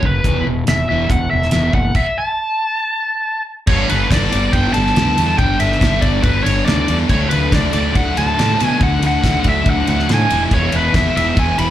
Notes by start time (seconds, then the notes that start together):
0.03 F#1 F#2 C#3 B4, kick
0.24 E1 E2 B2 E3, kick, closed hi-hat
0.47 E1 E2 B2
0.67 E1 E2 B2 E5, snare, closed hi-hat
0.89 E1 E2 B2 E3 E5
1.10 E1 E2 B2 F#5, kick, closed hi-hat
1.31 E1 E2 B2 E5
1.43 snare
1.51 E1 E2 B2 E3, snare, closed hi-hat
1.73 F#1 E2 B2 F#5, kick
1.95 E5, kick, crash
2.18 A5
3.67 G1 G2 D3 G3 B3 D4 C#5, kick, crash
3.89 G1 G3 B3 D4 B4, ride
4.11 G1 D3 G3 B3 D4 D5, kick, snare, ride
4.32 G1 G2 D3 G3 B3 D4 D5, ride
4.53 G1 D3 G3 B3 G5, kick, ride
4.57 D4
4.73 G1 D3 G3 B3 D4 A5, ride
4.78 G2
4.87 snare
4.95 D2 D3 G3 B3 D4, snare, ride
5.17 E2 G3 B3 D4, ride
5.38 G1 G2 D3 G3 B3 D4 G5, kick, ride
5.60 G1 G3 B3 D4 E5, ride
5.72 snare
5.81 G1 D3 G3 B3 D4, kick, snare, ride
6.01 G1 G3 B3 D4 D5, kick, ride
6.06 G2 D3
6.23 G1 D3 G3 B3 D4 B4, kick, ride
6.44 G1 D3 G3 B3 D4 C#5, ride
6.48 G2
6.65 D2 D3 G3 B3 D4 D5, snare, ride
6.88 E2 G3 B3 D4, ride
7.09 D2 D3 F#3 A3 D4 C#5, kick, crash
7.29 D2 D4 B4, ride
7.33 F#3 A3
7.52 D2 D3 F#3 A3 D4 D5, kick, snare, ride
7.73 D2 D3 F#3 A3 D4 D5, ride
7.95 D2 D3 F#3 A3 D4 F#5, kick, ride
8.16 D2 D3 F#3 A3 D4 A5, ride
8.37 A2 D3 F#3 A3 D4, snare, ride
8.59 B2 F#3 A3 D4, ride
8.65 G#5
8.79 D2 D3 F#3 A3 D4 F#5, kick, ride
9.02 D2 F#3 A3 D4, ride
9.07 F#5
9.22 D2 D3 F#3 A3 D4, kick, snare, ride
9.44 D2 D3 F#3 A3 D4, kick, ride
9.49 E5
9.65 D2 D3 F#3 A3 D4, kick, ride
9.70 F#5
9.87 D2 D3 F#3 A3 D4 F#5, ride
9.99 snare
10.09 A2 D3 F#3 A3 D4, snare, ride
10.14 G#5
10.30 E1 E3 G#3 B3 E4, ride
10.51 E1 E3 G#3 B3 E4 C#5, kick, crash
10.72 E1 G#3 B3 E4, ride
10.76 B4
10.94 E1 E3 G#3 B3 E4 E5, kick, snare, ride
11.15 E1 E3 G#3 B3 E4 E5, ride
11.36 E1 E3 G#3 B3 E4 G#5, kick, ride
11.57 E1 E3 G#3 B3 E4 B5, ride